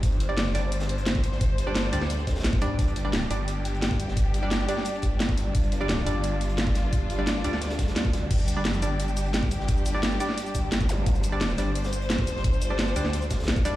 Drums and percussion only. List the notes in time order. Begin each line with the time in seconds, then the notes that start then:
0.03 kick, closed hi-hat
0.12 closed hi-hat
0.20 closed hi-hat
0.37 snare, closed hi-hat
0.54 snare, closed hi-hat, open hi-hat
0.72 closed hi-hat
0.80 snare, closed hi-hat
0.89 snare, closed hi-hat
0.98 closed hi-hat
1.06 snare, closed hi-hat
1.15 kick, snare
1.24 closed hi-hat, open hi-hat
1.32 snare
1.41 kick, closed hi-hat
1.58 closed hi-hat
1.75 snare, closed hi-hat
1.93 closed hi-hat, open hi-hat
2.01 snare
2.10 closed hi-hat
2.19 closed hi-hat
2.27 kick, snare, closed hi-hat
2.36 snare, closed hi-hat
2.40 snare, closed hi-hat
2.43 snare, closed hi-hat
2.53 kick
2.61 snare, closed hi-hat, open hi-hat
2.79 kick, closed hi-hat
2.88 closed hi-hat
2.96 closed hi-hat
3.13 snare, closed hi-hat
3.31 closed hi-hat, open hi-hat
3.48 closed hi-hat
3.65 closed hi-hat
3.74 closed hi-hat
3.82 snare, closed hi-hat
3.90 kick, snare
4.00 closed hi-hat, open hi-hat
4.08 snare
4.17 kick, closed hi-hat
4.34 closed hi-hat
4.51 snare, closed hi-hat
4.69 closed hi-hat, open hi-hat
4.77 snare
4.85 closed hi-hat
4.95 closed hi-hat
5.02 kick, closed hi-hat
5.20 snare, closed hi-hat
5.29 kick
5.37 snare, closed hi-hat, open hi-hat
5.55 kick, closed hi-hat
5.63 closed hi-hat
5.72 closed hi-hat
5.89 snare, closed hi-hat
6.06 closed hi-hat, open hi-hat
6.23 closed hi-hat
6.41 closed hi-hat
6.49 closed hi-hat
6.58 snare, closed hi-hat
6.67 kick, snare
6.75 snare, closed hi-hat, open hi-hat
6.93 kick, closed hi-hat
7.10 closed hi-hat
7.27 snare, closed hi-hat
7.44 closed hi-hat, open hi-hat
7.53 snare
7.61 snare, closed hi-hat
7.70 snare, closed hi-hat
7.79 kick, snare, closed hi-hat
7.88 snare, closed hi-hat
7.96 snare, closed hi-hat
8.05 kick
8.13 snare, closed hi-hat, open hi-hat
8.31 kick, closed hi-hat, crash
8.38 closed hi-hat, shaker
8.48 closed hi-hat, shaker
8.65 snare, closed hi-hat
8.74 shaker
8.82 closed hi-hat, open hi-hat, shaker
9.00 closed hi-hat
9.08 shaker
9.17 closed hi-hat, shaker
9.26 closed hi-hat
9.33 snare, closed hi-hat
9.43 kick, snare
9.51 closed hi-hat, open hi-hat, shaker
9.60 snare
9.68 kick, closed hi-hat
9.77 shaker
9.86 closed hi-hat, shaker
10.03 snare, closed hi-hat
10.12 shaker
10.20 closed hi-hat, open hi-hat, shaker
10.29 snare
10.38 closed hi-hat
10.46 closed hi-hat, shaker
10.54 kick, closed hi-hat, shaker
10.72 snare, closed hi-hat
10.81 kick, shaker
10.89 snare, closed hi-hat, open hi-hat, shaker
11.06 kick, closed hi-hat
11.15 closed hi-hat, shaker
11.23 closed hi-hat, shaker
11.41 snare, closed hi-hat
11.50 shaker
11.58 snare, closed hi-hat, open hi-hat, shaker
11.75 closed hi-hat
11.84 snare, closed hi-hat, shaker
11.93 snare, closed hi-hat, shaker
12.02 closed hi-hat
12.10 snare, closed hi-hat
12.18 kick, snare
12.27 closed hi-hat, open hi-hat, shaker
12.36 snare
12.44 kick, closed hi-hat
12.53 shaker
12.62 closed hi-hat, shaker
12.79 snare, closed hi-hat
12.87 shaker
12.96 closed hi-hat, open hi-hat, shaker
13.05 snare
13.13 closed hi-hat
13.21 closed hi-hat, shaker
13.30 kick, snare, closed hi-hat, shaker
13.39 snare, closed hi-hat
13.43 snare, closed hi-hat
13.48 snare, closed hi-hat
13.56 kick, shaker
13.65 snare, closed hi-hat, open hi-hat, shaker